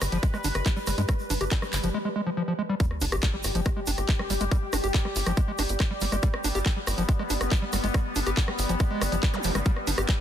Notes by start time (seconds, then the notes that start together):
Already playing: G3 B4
0.01 G1, cross-stick, open hi-hat, shaker
0.12 G1 F3, closed hi-hat, shaker
0.23 G#3, kick, closed hi-hat, shaker
0.34 G#3, cross-stick, shaker
0.44 G1 D4, open hi-hat, shaker
0.54 G1, cross-stick, closed hi-hat, shaker
0.66 G#3, kick, clap, closed hi-hat, shaker
0.76 G3, shaker
0.87 G1 G3, cross-stick, open hi-hat, shaker
0.98 G2 G#3, closed hi-hat, shaker
1.09 G3, kick, cross-stick, closed hi-hat, shaker
1.19 shaker
1.30 G1 D4, open hi-hat, shaker
1.41 G1 G4, cross-stick, closed hi-hat, shaker
1.51 G3, kick, clap, closed hi-hat, shaker
1.62 G3, cross-stick, shaker
1.73 G1, clap, open hi-hat, shaker
1.83 G1 F3, closed hi-hat, shaker
1.94 G#3
2.05 G#3
2.16 G#3
2.26 F3
2.37 F3
2.48 F3
2.59 G#3
2.69 G3
2.80 G3 G4, kick, closed hi-hat, sub drop, shaker
2.91 cross-stick
3.01 G1 D4, open hi-hat, shaker
3.12 G1 G4, cross-stick, closed hi-hat, shaker
3.22 G3, kick, clap, closed hi-hat, shaker
3.34 G3
3.44 G1, cross-stick, open hi-hat, shaker
3.55 G1 F3, closed hi-hat, shaker
3.65 G#3, kick, cross-stick, closed hi-hat, shaker
3.77 G#3
3.87 G1 D4, open hi-hat, shaker
3.98 G1, cross-stick, closed hi-hat, shaker
4.08 G#3, kick, clap, closed hi-hat, shaker
4.19 G3, cross-stick
4.30 G1 G3, open hi-hat, shaker
4.40 G1 G#3, closed hi-hat, shaker
4.51 G3, kick, cross-stick, closed hi-hat, shaker
4.73 G1 D4, cross-stick, open hi-hat, shaker
4.84 G1 G4, closed hi-hat, shaker
4.94 G3, kick, clap, closed hi-hat, shaker
5.05 G3, cross-stick
5.16 G1, open hi-hat, shaker
5.26 G1 F3, cross-stick, closed hi-hat, shaker
5.37 G#3, kick, closed hi-hat, shaker
5.48 G#3
5.58 G1 D4, cross-stick, open hi-hat, shaker
5.69 G1, closed hi-hat, shaker
5.80 G#3, kick, cross-stick, clap, closed hi-hat, shaker
5.91 G3
6.01 G1 G3, open hi-hat, shaker
6.12 G1 G#3, cross-stick, closed hi-hat, shaker
6.23 G3 B3, kick, closed hi-hat, shaker
6.34 cross-stick
6.44 G1 D4, open hi-hat, shaker
6.55 G1 G4, closed hi-hat, shaker
6.66 G3, kick, cross-stick, clap, closed hi-hat, shaker
6.76 G3
6.87 G1, cross-stick, open hi-hat, shaker
6.98 G1 F3, closed hi-hat, shaker
7.09 G#3, kick, closed hi-hat, shaker
7.19 G#3, cross-stick
7.30 G1 D4, open hi-hat, shaker
7.41 G1, cross-stick, closed hi-hat, shaker
7.51 G#3, kick, clap, closed hi-hat, shaker
7.62 G3
7.73 G1 G3, cross-stick, open hi-hat, shaker
7.84 G1 G#3, closed hi-hat, shaker
7.94 G3, kick, cross-stick, closed hi-hat, shaker
8.16 G1 D4, open hi-hat, shaker
8.26 G1 G4, cross-stick, closed hi-hat, shaker
8.37 G3, kick, clap, closed hi-hat, shaker
8.48 G3, cross-stick
8.59 G1, open hi-hat, shaker
8.69 G1 F3, closed hi-hat, shaker
8.80 G#3, kick, cross-stick, closed hi-hat, shaker
8.91 G#3
9.01 G1 G3, cross-stick, open hi-hat, shaker
9.12 G1 F3, closed hi-hat, shaker
9.23 G3, kick, clap, closed hi-hat, shaker
9.34 G3, cross-stick, zap
9.43 F1 F3, open hi-hat, shaker
9.55 G1 G3, cross-stick, closed hi-hat, shaker
9.65 G3 G4, kick, closed hi-hat, shaker
9.76 cross-stick
9.87 G1 D4, open hi-hat, shaker
9.98 G1 G4, cross-stick, closed hi-hat, shaker
10.09 G3, kick, clap, closed hi-hat, shaker